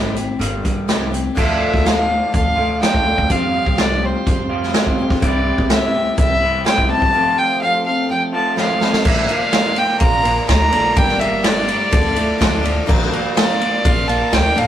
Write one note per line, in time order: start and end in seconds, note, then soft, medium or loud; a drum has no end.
0.00 0.29 G#1 medium
0.00 0.14 C3 medium
0.00 0.16 C3 medium
0.00 0.14 E3 medium
0.00 0.15 G3 medium
0.00 0.16 G3 medium
0.00 0.17 C4 medium
0.00 0.16 E4 medium
0.00 0.14 G4 medium
0.15 0.37 C3 medium
0.15 0.38 E3 medium
0.15 0.41 E4 soft
0.15 0.40 G4 soft
0.15 closed hi-hat medium
0.19 0.40 C4 soft
0.39 0.58 G1 medium
0.39 0.62 G2 medium
0.39 0.63 D3 medium
0.39 0.87 G3 medium
0.39 0.63 G3 medium
0.39 0.89 A#3 medium
0.39 0.89 D4 medium
0.39 0.89 G4 medium
0.39 closed hi-hat medium
0.64 0.87 G2 medium
0.64 0.83 G2 medium
0.64 0.87 D3 medium
0.64 0.88 G3 medium
0.64 kick medium
0.64 closed hi-hat medium
0.88 1.25 C2 medium
0.88 1.13 C3 medium
0.88 1.11 C3 medium
0.88 1.11 E3 medium
0.88 1.13 G3 medium
0.88 1.12 G3 medium
0.88 1.13 C4 medium
0.88 1.11 E4 medium
0.88 1.10 G4 medium
0.88 snare loud
0.88 closed hi-hat medium
1.12 1.34 C3 medium
1.12 1.34 E3 medium
1.12 1.36 C4 soft
1.12 1.36 E4 soft
1.12 1.36 G4 medium
1.12 closed hi-hat medium
1.35 1.65 D2 medium
1.35 1.84 D3 medium
1.35 2.55 D3 medium
1.35 1.82 F3 medium
1.35 2.56 A3 medium
1.35 1.83 D4 medium
1.35 2.55 D4 medium
1.35 3.27 F4 medium
1.35 1.85 F4 medium
1.35 2.55 F4 loud
1.35 3.27 A4 medium
1.35 1.85 A4 loud
1.35 3.27 D5 medium
1.35 1.87 E5 medium
1.35 kick medium
1.35 crash loud
1.74 2.19 D2 medium
1.74 kick medium
1.74 snare soft
1.83 2.08 F3 medium
1.83 2.09 D4 medium
1.83 2.09 F4 medium
1.83 2.06 A4 medium
1.83 2.34 F5 medium
1.83 snare loud
1.83 closed hi-hat medium
2.08 2.32 D4 soft
2.08 2.33 F4 soft
2.08 2.33 A4 medium
2.32 2.79 D2 medium
2.32 2.81 F3 soft
2.32 2.81 D4 soft
2.32 2.82 F4 medium
2.32 2.82 A4 medium
2.32 2.79 F5 loud
2.32 kick loud
2.32 closed hi-hat medium
2.56 2.79 D3 medium
2.56 2.80 A3 medium
2.56 2.80 D4 medium
2.56 2.79 F4 medium
2.80 3.27 D3 medium
2.80 3.06 F3 medium
2.80 3.28 A3 medium
2.80 3.28 D4 medium
2.80 3.06 D4 medium
2.80 3.29 F4 medium
2.80 3.06 F4 medium
2.80 3.33 G5 medium
2.80 snare loud
2.80 closed hi-hat medium
2.85 3.05 A4 medium
2.94 3.12 D2 medium
2.94 kick medium
3.06 3.30 D4 soft
3.06 3.29 F4 soft
3.06 3.30 A4 soft
3.18 3.27 D2 medium
3.18 kick medium
3.28 3.57 F2 medium
3.28 4.48 F3 medium
3.28 3.77 F3 medium
3.28 4.48 G3 medium
3.28 3.79 C4 medium
3.28 4.50 C4 medium
3.28 5.20 F4 medium
3.28 3.78 F4 medium
3.28 4.48 F4 medium
3.28 5.19 G4 medium
3.28 3.81 G4 medium
3.28 5.19 C5 medium
3.28 3.81 F5 medium
3.28 kick medium
3.28 closed hi-hat medium
3.66 4.11 C2 medium
3.66 kick medium
3.78 4.02 F3 medium
3.78 4.03 C4 medium
3.78 4.02 F4 medium
3.78 4.01 G4 medium
3.78 4.06 D5 medium
3.78 snare loud
3.78 closed hi-hat medium
4.02 4.27 C4 soft
4.02 4.27 F4 medium
4.02 4.26 G4 medium
4.02 4.51 C5 medium
4.27 4.72 F2 loud
4.27 4.73 F3 soft
4.27 4.76 C4 medium
4.27 4.76 F4 medium
4.27 4.76 G4 medium
4.27 kick medium
4.27 closed hi-hat medium
4.49 4.72 F3 medium
4.49 4.72 G3 medium
4.49 4.74 C4 medium
4.49 4.72 F4 medium
4.63 snare soft
4.73 5.20 F3 medium
4.73 4.98 F3 medium
4.73 5.20 G3 medium
4.73 5.22 C4 medium
4.73 4.99 C4 medium
4.73 5.21 F4 medium
4.73 4.99 F4 medium
4.73 snare loud
4.73 closed hi-hat medium
4.78 4.97 G4 medium
4.87 5.04 F2 medium
4.87 kick medium
4.98 5.23 C4 soft
4.98 5.23 F4 medium
4.98 5.22 G4 medium
5.10 5.19 F2 loud
5.10 kick medium
5.10 snare soft
5.21 5.49 C2 medium
5.21 6.40 C3 medium
5.21 5.70 C3 medium
5.21 6.40 E3 medium
5.21 6.40 G3 medium
5.21 5.69 G3 medium
5.21 6.40 C4 medium
5.21 5.71 C4 medium
5.21 7.12 E4 medium
5.21 6.39 E4 loud
5.21 5.71 E4 medium
5.21 7.12 G4 medium
5.21 5.71 G4 medium
5.21 7.12 C5 medium
5.21 kick loud
5.21 closed hi-hat medium
5.25 5.68 D5 medium
5.58 6.03 C2 medium
5.58 kick medium
5.70 5.94 G3 medium
5.70 5.95 C4 medium
5.70 5.95 E4 medium
5.70 6.16 E5 medium
5.70 snare loud
5.70 closed hi-hat medium
5.74 5.93 G4 medium
5.94 6.18 C4 soft
5.94 6.19 E4 soft
5.94 6.18 G4 medium
6.18 6.63 C2 medium
6.18 6.63 G3 medium
6.18 6.64 C4 medium
6.18 6.65 E4 medium
6.18 6.66 G4 medium
6.18 6.63 E5 loud
6.18 kick loud
6.18 closed hi-hat medium
6.40 6.64 C3 medium
6.40 6.64 E3 medium
6.40 6.64 G3 medium
6.40 6.64 C4 medium
6.40 6.64 E4 medium
6.65 7.12 C3 medium
6.65 7.12 E3 medium
6.65 6.89 G3 medium
6.65 7.12 G3 medium
6.65 6.89 C4 medium
6.65 7.13 C4 medium
6.65 6.89 E4 medium
6.65 7.13 E4 medium
6.65 6.87 G4 medium
6.65 6.89 G5 medium
6.65 snare loud
6.65 closed hi-hat medium
6.78 6.96 C2 medium
6.78 kick medium
6.88 7.12 C4 soft
6.88 7.14 E4 medium
6.88 7.13 G4 medium
6.88 7.39 A5 loud
7.02 7.11 C2 medium
7.02 kick medium
7.12 8.31 F2 medium
7.12 8.32 C3 loud
7.12 7.59 F3 medium
7.12 8.32 F3 medium
7.12 8.32 A3 medium
7.12 7.61 C4 medium
7.12 8.32 C4 loud
7.12 7.62 F4 medium
7.12 8.31 F4 medium
7.12 9.04 F4 medium
7.12 7.63 A4 medium
7.12 9.05 A4 medium
7.12 9.05 C5 medium
7.38 7.61 G5 loud
7.60 7.85 F3 medium
7.60 7.86 C4 medium
7.60 7.86 F4 medium
7.60 7.84 A4 medium
7.60 7.84 F5 medium
7.85 8.09 C4 soft
7.85 8.10 F4 soft
7.85 8.09 A4 medium
7.85 8.08 F5 medium
8.09 8.55 F3 medium
8.09 8.56 C4 medium
8.09 8.57 F4 medium
8.09 8.58 A4 medium
8.09 8.21 G5 loud
8.32 8.55 F2 medium
8.32 8.55 C3 medium
8.32 8.56 F3 medium
8.32 8.56 A3 medium
8.32 8.56 C4 medium
8.32 8.56 F4 medium
8.32 8.56 A5 medium
8.56 9.04 F2 medium
8.56 9.04 C3 medium
8.56 8.81 F3 medium
8.56 9.04 F3 medium
8.56 9.04 A3 medium
8.56 8.81 C4 medium
8.56 9.04 C4 medium
8.56 9.04 F4 medium
8.56 8.80 F4 medium
8.56 8.79 A4 medium
8.56 snare medium
8.60 9.09 F5 medium
8.80 9.05 C4 soft
8.80 9.06 F4 medium
8.80 9.05 A4 medium
8.80 snare medium
8.93 snare medium
9.04 9.23 A#1 medium
9.04 9.29 A#2 medium
9.04 10.25 A#2 medium
9.04 9.29 D3 medium
9.04 9.29 F3 medium
9.04 9.29 A#3 medium
9.04 9.27 D4 medium
9.04 10.95 F4 medium
9.04 10.95 A#4 medium
9.04 9.26 A#4 medium
9.04 10.95 D5 medium
9.04 9.33 E5 medium
9.04 kick loud
9.04 crash loud
9.17 snare soft
9.27 9.50 F3 soft
9.27 10.23 A#3 medium
9.27 9.52 A#3 soft
9.27 9.53 D4 soft
9.27 9.52 A#4 medium
9.27 ride medium
9.32 9.80 F5 loud
9.51 10.24 F3 medium
9.51 10.23 A#3 medium
9.51 10.23 D4 medium
9.51 9.99 F4 medium
9.51 10.21 A#4 medium
9.51 snare loud
9.51 ride loud
9.76 10.47 D4 medium
9.76 10.00 G5 medium
9.76 ride medium
10.00 10.37 A#1 loud
10.00 10.97 F4 medium
10.00 10.46 A#5 loud
10.00 kick loud
10.00 ride medium
10.23 10.47 F3 soft
10.23 10.97 A#3 medium
10.23 10.48 A#3 soft
10.23 10.48 D4 soft
10.23 10.48 A#4 medium
10.23 ride medium
10.48 10.67 D2 medium
10.48 10.73 F3 medium
10.48 10.72 A#3 medium
10.48 11.67 D4 medium
10.48 10.72 D4 medium
10.48 10.71 A#4 medium
10.48 10.99 A#5 loud
10.48 kick medium
10.48 snare loud
10.48 ride loud
10.72 10.92 A#1 medium
10.72 10.95 A#2 medium
10.72 10.97 D3 medium
10.72 10.95 D3 medium
10.72 10.96 F3 medium
10.72 10.96 A#3 medium
10.72 10.97 D4 medium
10.72 10.97 A#4 medium
10.72 ride medium
10.96 11.69 G1 medium
10.96 11.20 G2 medium
10.96 11.92 G2 medium
10.96 11.21 D3 medium
10.96 11.21 G3 medium
10.96 11.21 A#3 medium
10.96 11.19 D4 medium
10.96 11.92 G4 medium
10.96 11.92 A#4 medium
10.96 11.18 A#4 medium
10.96 11.88 D5 medium
10.96 11.21 G5 loud
10.96 kick loud
10.96 ride medium
11.08 snare soft
11.19 11.93 A#3 medium
11.19 11.43 A#3 soft
11.19 11.44 D4 soft
11.19 11.44 A#4 medium
11.19 11.46 E5 medium
11.19 ride medium
11.23 11.42 G3 soft
11.43 11.90 G3 medium
11.43 11.91 A#3 medium
11.43 11.91 D4 medium
11.43 11.92 G4 medium
11.43 11.92 A#4 medium
11.43 12.65 D5 medium
11.43 snare loud
11.43 ride loud
11.68 12.40 D4 medium
11.68 ride medium
11.89 12.29 D2 loud
11.89 12.15 D3 medium
11.89 12.88 D3 medium
11.89 12.16 F3 medium
11.89 12.16 D4 medium
11.89 12.87 E4 medium
11.89 12.15 E4 medium
11.89 12.87 F4 medium
11.89 12.13 A4 medium
11.89 12.86 D5 medium
11.89 kick loud
11.89 ride loud
12.14 12.88 A3 medium
12.14 12.38 D4 medium
12.14 12.39 E4 medium
12.14 12.40 A4 medium
12.14 ride medium
12.38 12.77 D2 loud
12.38 12.63 F3 medium
12.38 12.62 D4 medium
12.38 13.61 D4 medium
12.38 12.62 E4 medium
12.38 12.61 A4 medium
12.38 kick medium
12.38 snare loud
12.38 ride loud
12.62 12.86 D3 medium
12.62 12.86 F3 medium
12.62 12.89 F3 medium
12.62 12.87 D4 medium
12.62 12.88 E4 medium
12.62 12.88 A4 medium
12.62 ride medium
12.86 13.07 A#1 medium
12.86 13.12 A#2 medium
12.86 14.09 A#2 medium
12.86 13.12 D3 loud
12.86 13.11 F3 medium
12.86 13.11 A#3 medium
12.86 13.10 D4 medium
12.86 14.67 F4 medium
12.86 14.67 A#4 medium
12.86 13.09 A#4 loud
12.86 14.67 D5 medium
12.86 kick loud
12.86 crash loud
13.02 snare soft
13.10 13.33 F3 soft
13.10 13.35 A#3 medium
13.10 14.06 A#3 medium
13.10 13.36 D4 medium
13.10 13.35 A#4 medium
13.10 ride medium
13.34 14.08 F3 medium
13.34 14.08 A#3 medium
13.34 14.08 D4 medium
13.34 13.84 F4 medium
13.34 14.06 A#4 medium
13.34 snare loud
13.34 ride loud
13.39 13.88 D5 medium
13.61 14.32 D4 medium
13.61 ride medium
13.85 14.21 A#1 loud
13.85 14.67 F4 medium
13.85 14.09 F5 loud
13.85 kick loud
13.85 ride loud
14.07 14.30 F3 soft
14.07 14.67 A#3 medium
14.07 14.31 A#3 soft
14.07 14.33 D4 medium
14.07 14.32 A#4 medium
14.07 14.35 A5 medium
14.07 ride medium
14.32 14.51 D2 loud
14.32 14.56 F3 medium
14.32 14.55 A#3 medium
14.32 14.67 D4 medium
14.32 14.54 D4 medium
14.32 14.53 A#4 medium
14.32 14.60 G5 loud
14.32 kick medium
14.32 snare loud
14.32 ride loud
14.54 14.67 A1 loud
14.54 14.67 A#2 medium
14.54 14.67 D3 medium
14.54 14.67 F3 medium
14.54 14.67 A#3 medium
14.54 14.67 D4 medium
14.54 14.67 A#4 medium
14.54 ride medium
14.58 14.67 F5 medium